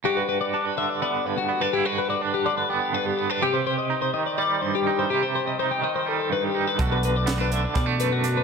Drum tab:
HH |-------|-------|-------|-------|
SD |-------|-------|-------|-------|
BD |-------|-------|-------|-------|

HH |xxxxxxx|
SD |--o-o--|
BD |o---o--|